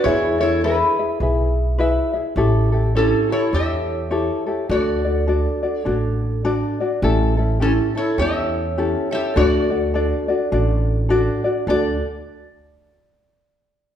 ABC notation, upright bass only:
X:1
M:4/4
L:1/8
Q:"Swing" 1/4=103
K:D
V:1 name="Upright bass" clef=bass
E,,4 B,,,4 | A,,,4 E,,4 | D,,4 A,,,4 | A,,,4 E,,4 |
D,,4 A,,,4 | D,, z6 z |]